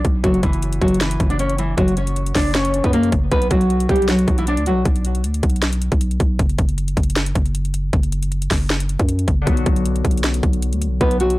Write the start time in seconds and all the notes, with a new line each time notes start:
0.05 B1, kick, closed hi-hat
0.23 F#1 F#3 F#4, kick, closed hi-hat
0.34 closed hi-hat
0.43 F#1 E3 E4, kick, closed hi-hat
0.53 closed hi-hat
0.62 closed hi-hat
0.73 closed hi-hat
0.81 F#1 F#3 F#4, kick, closed hi-hat
0.88 closed hi-hat
0.94 closed hi-hat
1.00 E3 E4, snare, closed hi-hat
1.11 closed hi-hat
1.20 F#1, kick, closed hi-hat
1.30 D4 D5, closed hi-hat
1.39 C#4 C#5, closed hi-hat
1.50 closed hi-hat
1.58 E3 E4, closed hi-hat
1.77 F#1 F#3 F#4, kick, closed hi-hat
1.88 closed hi-hat
1.97 C#4 C#5, closed hi-hat
2.07 closed hi-hat
2.16 closed hi-hat
2.26 closed hi-hat
2.35 F#1 D4 D5, kick, snare, open hi-hat
2.55 C#4 C#5, snare, closed hi-hat
2.65 closed hi-hat
2.74 closed hi-hat
2.84 F#2 B3 B4, kick, closed hi-hat
2.93 A#3 A#4, closed hi-hat
3.03 closed hi-hat
3.12 F#1, kick, closed hi-hat
3.31 B1 B3 B4, kick, closed hi-hat
3.42 closed hi-hat
3.50 B1 F#3 F#4, kick, closed hi-hat
3.61 closed hi-hat
3.70 closed hi-hat
3.80 closed hi-hat
3.89 B1 G3 G4, kick, closed hi-hat
3.96 closed hi-hat
4.02 closed hi-hat
4.08 F#3 F#4, snare, closed hi-hat
4.19 closed hi-hat
4.28 B1, kick, closed hi-hat
4.38 E3 E4, closed hi-hat
4.47 D4 D5, closed hi-hat
4.57 D2, closed hi-hat
4.66 F#3 F#4, closed hi-hat
4.71 B1
4.85 B1, kick, closed hi-hat
4.96 closed hi-hat
5.05 closed hi-hat
5.15 closed hi-hat
5.24 D2, closed hi-hat
5.34 closed hi-hat
5.43 B1, kick, closed hi-hat, open hi-hat
5.50 closed hi-hat
5.56 closed hi-hat
5.62 snare, closed hi-hat
5.73 closed hi-hat
5.82 closed hi-hat
5.92 B1, kick, closed hi-hat
6.01 closed hi-hat
6.11 closed hi-hat
6.20 B1, kick, closed hi-hat
6.39 F#1, kick, closed hi-hat
6.49 closed hi-hat
6.58 F#1, kick, closed hi-hat
6.69 closed hi-hat
6.78 closed hi-hat
6.88 closed hi-hat
6.97 F#1, kick, closed hi-hat
7.03 closed hi-hat
7.10 closed hi-hat
7.16 snare, closed hi-hat
7.26 closed hi-hat
7.35 F#1, kick, closed hi-hat
7.46 closed hi-hat
7.55 closed hi-hat
7.65 closed hi-hat
7.74 closed hi-hat
7.93 F#1, kick, closed hi-hat
8.03 closed hi-hat
8.12 closed hi-hat
8.23 closed hi-hat
8.32 closed hi-hat
8.42 closed hi-hat
8.51 F#1, kick, snare, open hi-hat
8.70 snare, closed hi-hat
8.80 closed hi-hat
8.89 closed hi-hat
8.99 F#2, kick, closed hi-hat
9.09 closed hi-hat
9.19 closed hi-hat
9.28 F#1, kick, closed hi-hat
9.42 D3 F#3
9.47 B1 B3, kick, closed hi-hat
9.53 F#4
9.57 closed hi-hat
9.66 B1, kick, closed hi-hat
9.76 closed hi-hat
9.86 closed hi-hat
9.96 closed hi-hat
10.05 B1, kick, closed hi-hat
10.11 closed hi-hat
10.18 closed hi-hat
10.24 snare, closed hi-hat
10.34 closed hi-hat
10.43 B1, kick, closed hi-hat
10.53 closed hi-hat
10.62 closed hi-hat
10.73 D2, closed hi-hat
10.82 closed hi-hat
10.87 B1
11.01 B1 B3 B4, kick, closed hi-hat
11.11 closed hi-hat
11.20 F#3 F#4, closed hi-hat
11.30 closed hi-hat